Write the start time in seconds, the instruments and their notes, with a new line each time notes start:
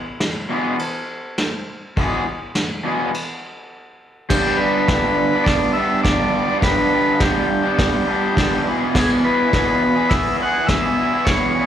0.20 snare, crash
0.49 overdriven electric guitar E2 B2 E3 G#3 B3 G#4
0.79 crash
1.38 snare, crash
1.97 overdriven electric guitar E2 B2 E3 G#3 B3, kick, crash
2.01 overdriven electric guitar G#4
2.55 snare, crash
2.84 overdriven electric guitar E2 B2 E3 G#3 B3 G#4
3.14 crash
4.29 overdriven electric guitar G2 D3 G3 B3, transistor combo organ G4, kick, snare, crash
4.34 overdriven electric guitar D4 G4
4.57 overdriven electric guitar G3 B3, transistor combo organ B4
4.62 overdriven electric guitar D4 G4
4.88 overdriven electric guitar G2 D3 G3 B3, kick, snare, open hi-hat
4.92 overdriven electric guitar D4 G4
5.02 overdriven electric guitar B3 D4 G4
5.06 overdriven electric guitar G3
5.17 muted overdriven electric guitar stroke
5.31 overdriven electric guitar B3 D4 G4
5.36 overdriven electric guitar G3
5.44 transistor combo organ D5, kick, snare, open hi-hat
5.73 overdriven electric guitar G3 B3, transistor combo organ E5
5.77 overdriven electric guitar D4 G4
6.04 overdriven electric guitar G2 D3 G3 B3 D4 G4, transistor combo organ D5, kick, snare, open hi-hat
6.18 overdriven electric guitar B3 D4 G4
6.23 overdriven electric guitar G3
6.30 overdriven electric guitar G3 B3 D4
6.36 overdriven electric guitar G4
6.47 overdriven electric guitar D4 G4
6.51 overdriven electric guitar G3 B3
6.60 overdriven electric guitar G2 D3 G3 B3, transistor combo organ B4, kick, snare, open hi-hat
6.65 overdriven electric guitar D4 G4
6.89 overdriven electric guitar G3 B3 D4
6.94 overdriven electric guitar G4
7.18 overdriven electric guitar G2 D3 G3 B3 D4, transistor combo organ G4, kick, snare, open hi-hat
7.23 overdriven electric guitar G4
7.32 overdriven electric guitar D4 G4
7.36 overdriven electric guitar G3 B3
7.48 muted overdriven electric guitar stroke
7.63 overdriven electric guitar B3 D4 G4
7.67 overdriven electric guitar G3
7.79 kick, snare, open hi-hat
8.06 overdriven electric guitar G3 B3 D4
8.10 overdriven electric guitar G4
8.35 overdriven electric guitar G2 D3 G3 B3 D4, kick, snare, open hi-hat
8.40 overdriven electric guitar G4
8.51 overdriven electric guitar B3 D4 G4
8.55 overdriven electric guitar G3
8.65 overdriven electric guitar E2 B2 E3 B3 E4
8.69 overdriven electric guitar G#4
8.80 overdriven electric guitar B3 E4 G#4
8.85 overdriven electric guitar E3
8.93 overdriven electric guitar E2 B2 E3 B3 E4 G#4, kick, snare, crash
8.99 transistor combo organ G#4
9.22 overdriven electric guitar E3 B3 E4, transistor combo organ B4
9.27 overdriven electric guitar G#4
9.50 overdriven electric guitar E2 B2 E3 B3, kick, snare, open hi-hat
9.54 overdriven electric guitar E4 G#4
9.65 overdriven electric guitar E3 B3 E4 G#4
9.82 muted overdriven electric guitar stroke
9.95 overdriven electric guitar B3 E4 G#4
9.99 overdriven electric guitar E3
10.09 transistor combo organ E5, kick, snare, open hi-hat
10.38 overdriven electric guitar E3 B3 E4 G#4
10.42 transistor combo organ F#5
10.66 overdriven electric guitar E2 B2 E3, transistor combo organ E5, kick, snare, open hi-hat
10.71 overdriven electric guitar B3 E4 G#4
10.83 overdriven electric guitar B3 E4 G#4
10.87 overdriven electric guitar E3
10.98 overdriven electric guitar E3 B3 E4 G#4
11.12 overdriven electric guitar E3 B3 E4 G#4
11.25 overdriven electric guitar E2 B2 E3, transistor combo organ C#5, kick, snare, open hi-hat
11.29 overdriven electric guitar B3 E4 G#4
11.55 overdriven electric guitar E3 B3 E4
11.61 overdriven electric guitar G#4